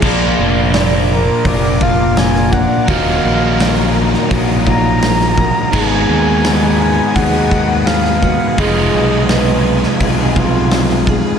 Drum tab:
CC |x---------------|----------------|x---------------|----------------|
HH |----o---o---o---|o---o---o---o---|----o---o---o---|o---o---o---o---|
SD |----o-------oo--|----o--o----oo--|----o-------oo--|----o--o----oo--|
BD |o-------o-o---o-|o-------o-o---o-|o-------o-o---o-|o-------o-o---o-|